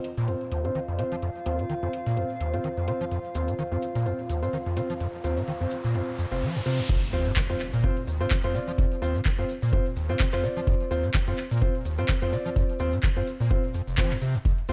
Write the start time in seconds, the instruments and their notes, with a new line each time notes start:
Already playing: ambient pad F4 C5 D#5 F5
0.04 closed hi-hat
0.17 acid bass A#2, closed hi-hat
0.28 acid bass F2, grand piano C4 F4 C5, closed hi-hat
0.41 closed hi-hat
0.52 acid bass D#2, closed hi-hat
0.65 acid bass G#2, grand piano C4 F4 C5, closed hi-hat
0.75 acid bass D#3, closed hi-hat
0.88 acid bass F2, closed hi-hat
0.99 acid bass C3, grand piano C4 F4 C5, closed hi-hat
1.12 acid bass F3, closed hi-hat
1.22 acid bass F2, closed hi-hat
1.35 closed hi-hat
1.46 acid bass D#2, grand piano C4 F4 C5, closed hi-hat
1.59 acid bass G#2, closed hi-hat
1.70 acid bass D#3, closed hi-hat
1.83 acid bass F2, grand piano C4 F4 C5, closed hi-hat
1.93 closed hi-hat
2.06 acid bass A#2, closed hi-hat
2.17 acid bass F2, grand piano C4 F4 C5, closed hi-hat
2.30 closed hi-hat
2.41 acid bass D#2, closed hi-hat
2.54 acid bass G#2, grand piano C4 F4 C5, closed hi-hat
2.64 acid bass D#3, closed hi-hat
2.77 acid bass F2, closed hi-hat
2.88 acid bass C3, grand piano C4 F4 C5, closed hi-hat
3.01 acid bass F3, closed hi-hat
3.11 acid bass F2, closed hi-hat, riser, shaker
3.25 closed hi-hat
3.35 acid bass D#2, grand piano C4 F4 C5, closed hi-hat, shaker
3.48 acid bass G#2, closed hi-hat, shaker
3.59 acid bass D#3, closed hi-hat, shaker
3.72 acid bass F2, grand piano C4 F4 C5, closed hi-hat
3.82 closed hi-hat, shaker
3.95 acid bass A#2, closed hi-hat, shaker
4.06 acid bass F2, grand piano C4 F4 C5, closed hi-hat, shaker
4.19 closed hi-hat
4.29 acid bass D#2, closed hi-hat, shaker
4.43 acid bass G#2, grand piano C4 F4 C5, closed hi-hat, shaker
4.53 acid bass D#3, closed hi-hat, shaker
4.66 acid bass F2, closed hi-hat
4.77 acid bass C3, grand piano C4 F4 C5, closed hi-hat, shaker
4.89 acid bass F3, closed hi-hat, shaker
5.00 acid bass F2, closed hi-hat, shaker
5.13 closed hi-hat
5.24 acid bass D#2, grand piano C4 F4 C5, closed hi-hat, shaker
5.37 acid bass G#2, closed hi-hat, shaker
5.47 acid bass D#3, closed hi-hat, shaker
5.61 acid bass F2, grand piano C4 F4 C5, closed hi-hat
5.71 closed hi-hat, shaker
5.84 acid bass A#2, closed hi-hat, shaker
5.95 acid bass F2, grand piano C4 F4 C5, closed hi-hat, shaker
6.08 closed hi-hat
6.19 acid bass F2, closed hi-hat, shaker
6.31 acid bass F1, grand piano C4 F4 C5, closed hi-hat, shaker
6.42 acid bass F3, closed hi-hat, shaker
6.55 acid bass F2, closed hi-hat
6.66 acid bass C3, grand piano C4 F4 C5, closed hi-hat, shaker
6.78 acid bass F2, closed hi-hat, shaker
6.89 acid bass F2, kick, closed hi-hat, crash, impact, shaker
7.02 closed hi-hat
7.13 acid bass D#2, grand piano C4 F4 C5, open hi-hat, shaker
7.26 acid bass G#2, closed hi-hat, shaker
7.36 acid bass D#3, kick, clap, closed hi-hat, shaker
7.50 acid bass F2, grand piano C4 F4 C5, closed hi-hat
7.60 clap, open hi-hat, shaker
7.73 acid bass A#2, closed hi-hat, shaker
7.83 acid bass F2, grand piano C4 F4 C5, kick, closed hi-hat, shaker
7.97 closed hi-hat
8.07 acid bass D#2, open hi-hat, shaker
8.20 acid bass G#2, grand piano C4 F4 C5, closed hi-hat, shaker
8.31 acid bass D#3, kick, clap, closed hi-hat, shaker
8.44 acid bass F2, grand piano C4 F4 C5, closed hi-hat
8.55 acid bass C3, grand piano C4 F4 D5, open hi-hat, shaker
8.68 acid bass F3, closed hi-hat, shaker
8.78 acid bass F2, kick, closed hi-hat, shaker
8.92 closed hi-hat
9.02 acid bass D#2, grand piano C4 F4 C5, open hi-hat, shaker
9.15 acid bass G#2, closed hi-hat, shaker
9.25 acid bass D#3, kick, clap, closed hi-hat, shaker
9.39 acid bass F2, grand piano C4 F4 C5, closed hi-hat
9.49 open hi-hat, shaker
9.62 acid bass A#2, closed hi-hat, shaker
9.73 acid bass F2, grand piano C4 F4 C5, kick, closed hi-hat, shaker
9.86 closed hi-hat
9.96 acid bass D#2, open hi-hat, shaker
10.09 acid bass G#2, grand piano C4 F4 C5, closed hi-hat, shaker
10.20 acid bass D#3, kick, clap, closed hi-hat, shaker
10.33 acid bass F2, grand piano C4 F4 C5, clap, closed hi-hat
10.44 acid bass C3, grand piano C4 F4 D5, open hi-hat, shaker
10.57 acid bass F3, closed hi-hat, shaker
10.67 acid bass F2, kick, closed hi-hat, shaker
10.80 closed hi-hat
10.91 acid bass D#2, grand piano C4 F4 C5, open hi-hat, shaker
11.03 acid bass G#2, closed hi-hat, shaker
11.14 acid bass D#3, kick, clap, closed hi-hat, shaker
11.27 acid bass F2, grand piano C4 F4 C5, closed hi-hat
11.37 clap, open hi-hat, shaker
11.51 acid bass A#2, closed hi-hat, shaker
11.62 acid bass F2, grand piano C4 F4 C5, kick, closed hi-hat, shaker
11.75 closed hi-hat
11.85 acid bass D#2, open hi-hat, shaker
11.98 acid bass G#2, grand piano C4 F4 C5, closed hi-hat, shaker
12.08 acid bass D#3, kick, clap, closed hi-hat, shaker
12.22 acid bass F2, grand piano C4 F4 C5, closed hi-hat
12.32 acid bass C3, grand piano C4 F4 D5, open hi-hat, shaker
12.45 acid bass F3, closed hi-hat, shaker
12.56 acid bass F2, kick, closed hi-hat, shaker
12.69 closed hi-hat
12.79 acid bass D#2, grand piano C4 F4 C5, open hi-hat, shaker
12.92 acid bass G#2, closed hi-hat, shaker
13.03 acid bass D#3, kick, clap, closed hi-hat, shaker
13.16 acid bass F2, grand piano C4 F4 C5, closed hi-hat
13.27 open hi-hat, shaker
13.40 acid bass A#2, closed hi-hat, shaker
13.50 acid bass F2, grand piano C4 F4 C5, kick, closed hi-hat, shaker
13.64 closed hi-hat
13.74 acid bass F2, open hi-hat, shaker
13.87 acid bass F1, closed hi-hat, shaker
13.98 acid bass F3, grand piano C4 F4 C5, kick, clap, closed hi-hat, shaker
14.11 acid bass F2, clap, closed hi-hat
14.21 acid bass C3, open hi-hat, shaker
14.35 acid bass F2, closed hi-hat, shaker
14.45 acid bass F2, kick, closed hi-hat, shaker
14.58 closed hi-hat
14.69 acid bass D#2, grand piano C4 F4 C5, open hi-hat, shaker